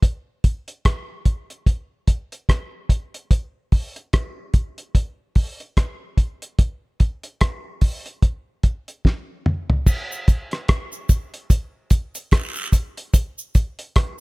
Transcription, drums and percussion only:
0.03 kick, closed hi-hat
0.44 kick, closed hi-hat
0.68 closed hi-hat
0.85 kick, cross-stick, closed hi-hat
1.25 kick, closed hi-hat
1.50 closed hi-hat
1.66 kick, closed hi-hat
2.07 kick, closed hi-hat
2.32 closed hi-hat
2.49 kick, cross-stick, closed hi-hat
2.89 kick, closed hi-hat
3.14 closed hi-hat
3.31 kick, closed hi-hat
3.72 kick, open hi-hat
3.96 closed hi-hat
4.13 kick, cross-stick, closed hi-hat
4.54 kick, closed hi-hat
4.78 closed hi-hat
4.95 kick, closed hi-hat
5.35 kick, open hi-hat
5.60 closed hi-hat
5.77 kick, cross-stick, closed hi-hat
6.17 kick, closed hi-hat
6.42 closed hi-hat
6.59 kick, closed hi-hat
7.00 kick, closed hi-hat
7.23 closed hi-hat
7.41 kick, cross-stick, closed hi-hat
7.81 kick, open hi-hat
8.06 closed hi-hat
8.22 kick, closed hi-hat
8.63 kick, closed hi-hat
8.88 closed hi-hat
9.05 kick, snare
9.46 mid tom
9.70 floor tom
9.86 kick, crash, cabasa
10.12 cabasa
10.28 kick, closed hi-hat, cabasa
10.51 cross-stick, closed hi-hat
10.68 kick, cross-stick, closed hi-hat
10.92 cabasa
11.09 kick, closed hi-hat, cabasa
11.34 closed hi-hat
11.50 kick, closed hi-hat, cabasa
11.90 kick, closed hi-hat, cabasa
12.15 closed hi-hat, cabasa
12.31 kick, cross-stick, closed hi-hat, long guiro
12.56 cabasa
12.72 kick, closed hi-hat, cabasa
12.97 closed hi-hat
13.14 kick, closed hi-hat, cabasa
13.38 cabasa
13.55 kick, closed hi-hat, cabasa
13.79 closed hi-hat
13.96 kick, cross-stick, closed hi-hat

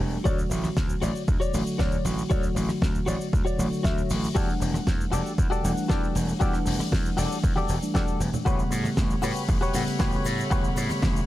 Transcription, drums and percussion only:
0.25 kick, shaker
0.39 shaker
0.51 open hi-hat, shaker
0.64 cross-stick, high conga, shaker
0.77 kick, snare, shaker
0.89 shaker
1.02 open hi-hat, shaker
1.16 shaker
1.28 kick, shaker
1.41 shaker
1.54 open hi-hat, shaker
1.66 shaker
1.79 kick, snare, shaker
1.92 shaker
2.05 open hi-hat, shaker
2.18 shaker
2.30 kick, shaker
2.43 shaker
2.56 open hi-hat, shaker
2.69 cross-stick, high conga, shaker
2.82 kick, snare, shaker
2.95 shaker
3.07 open hi-hat, shaker
3.21 shaker
3.33 kick, shaker
3.47 shaker
3.59 open hi-hat, shaker
3.73 shaker
3.84 kick, snare, shaker
3.98 shaker
4.10 open hi-hat, shaker
4.24 shaker
4.36 kick, shaker
4.49 shaker
4.61 open hi-hat, shaker
4.74 cross-stick, high conga, shaker
4.87 kick, snare, shaker
5.01 shaker
5.12 open hi-hat, shaker
5.26 shaker
5.38 kick, shaker
5.52 shaker
5.64 open hi-hat, shaker
5.77 shaker
5.89 kick, snare, shaker
6.04 shaker
6.15 open hi-hat, shaker
6.29 shaker
6.41 kick, shaker
6.53 cross-stick, shaker
6.66 open hi-hat, shaker
6.79 cross-stick, high conga, shaker
6.92 kick, snare, shaker
7.05 shaker
7.18 open hi-hat, shaker
7.32 shaker
7.44 kick, shaker
7.57 high conga, shaker
7.69 open hi-hat, shaker
7.82 shaker
7.95 kick, snare, shaker
8.08 shaker
8.21 open hi-hat, shaker
8.34 low conga, shaker
8.46 kick, shaker
8.59 shaker
8.72 open hi-hat, shaker
8.84 cross-stick, high conga, shaker
8.97 kick, snare, shaker
9.10 shaker
9.22 open hi-hat, shaker
9.36 shaker
9.48 kick, shaker
9.62 shaker
9.74 open hi-hat, shaker
9.87 shaker
9.99 kick, snare, shaker
10.12 shaker
10.24 open hi-hat, shaker
10.38 shaker
10.40 shaker
10.51 kick, shaker
10.64 shaker
10.76 open hi-hat, shaker
10.90 cross-stick, high conga, shaker
11.02 kick, snare, shaker
11.16 shaker

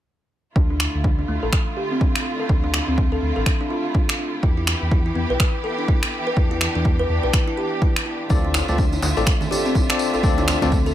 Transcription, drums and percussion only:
0.56 kick
0.80 finger snap
1.04 kick
1.53 finger snap, kick
2.01 kick
2.15 finger snap
2.49 kick
2.74 finger snap
2.98 kick
3.46 finger snap, kick
3.95 kick
4.09 finger snap
4.43 kick
4.67 finger snap
4.91 kick
5.40 finger snap, kick
5.88 kick
6.03 finger snap
6.37 kick
6.61 finger snap
6.85 kick
7.33 finger snap, kick
7.82 kick
7.96 finger snap
8.29 kick, tambourine, djembe tone, high conga
8.54 finger snap, tambourine, djembe tone
8.68 tambourine, high conga
8.78 kick, tambourine
8.93 tambourine, djembe tone
9.02 tambourine, djembe slap, high conga
9.17 tambourine, djembe tone
9.26 finger snap, kick, tambourine
9.41 tambourine, high conga, low conga
9.51 tambourine, djembe tone
9.66 tambourine
9.75 kick, tambourine, djembe tone
9.89 finger snap, tambourine
9.99 tambourine
10.14 tambourine, djembe tone
10.23 kick, tambourine, high conga
10.38 tambourine, djembe tone
10.48 finger snap, tambourine, low conga
10.62 tambourine, djembe slap, high conga
10.72 kick, tambourine, djembe tone
10.87 tambourine

